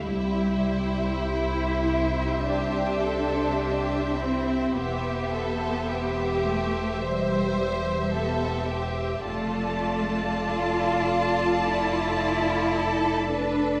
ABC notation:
X:1
M:4/4
L:1/8
Q:1/4=52
K:C
V:1 name="Violin section"
e8 | e8 | a8 |]
V:2 name="Viola section"
[Gc]8 | [Gc]8 | [Ad]8 |]
V:3 name="Violin section"
E4 G A G E | G A G2 c2 A G | F6 A B |]
V:4 name="Cello section"
G,2 E2 D3 C | B,3 A, G,2 B, z | A,2 F2 E3 D |]
V:5 name="Double bass section" clef=bass
C,,8 | E,,,8 | F,,,8 |]